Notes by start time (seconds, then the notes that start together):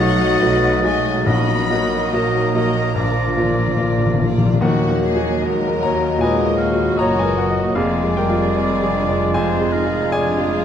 Already playing: B1 F#3 D#4 F#4 D#5 F#5 A6
0.00 A3 F#4 C#5 D#5
0.42 B1 A3 F#4 B4 D#5
0.83 G#3 A3 F#4 G#4 D#5 G#5
1.26 A#1 A#2 F#3 B3 D#4 F#4 A#4 D#5 B5 A#6
1.70 A#3 F#4 D#5
2.13 A#1 F#3 A#3 D#4 F#4 D#5 A#5 A#6
2.54 A#3 F#4 D#5
2.95 A#1 A#2 F3 D4 F4 D5 A#6
3.04 A#2
3.11 A#2
3.19 A#2
3.27 A#2
3.35 A#2 A#3 F4 D5
3.43 A#2
3.51 A#2
3.58 A#2
3.67 A#2
3.75 A#1 A#2 A#3 F4 D5
3.82 A#2
3.90 A#2
3.98 A#2
4.06 A#2
4.14 A#2
4.19 A#2 A#3 F4 D5
4.30 A#2
4.38 A#2
4.46 A#2
4.53 A#2
4.61 D#2 D#3 F#3 A#3 F#4 A#4 D#5 F#5
4.89 A#3
5.04 G#4
5.16 F#4
5.42 G#3 A#4 D#5
5.68 A#4
5.82 F#3 A#3 C#5 A#5
5.94 D#5
6.19 A#2 A#4 B4 D#5 G#5
6.23 G#3
6.45 A#3
6.58 F#4 F5
6.72 F#4
6.97 F#1 F#2 A#3 C#5 D#5 A#5
7.18 G#3 B4 G#5
7.23 A#4
7.37 F#3 A#4 F#5
7.50 D#5
7.75 F1 F2 F3 G#3 F4 G#4 D5 F5
8.03 G#3
8.15 G3 A#4 G5
8.30 F4
8.56 C4 D5 F5
8.83 G#4
8.96 D4
9.09 D5
9.33 F2 G#3 F4 G#4 C5 D5 F5 G#5
9.61 G#3
9.73 D#4 A#4
9.86 F4
10.11 G#3 D4 F4 G#4 D5 G#5
10.38 G#4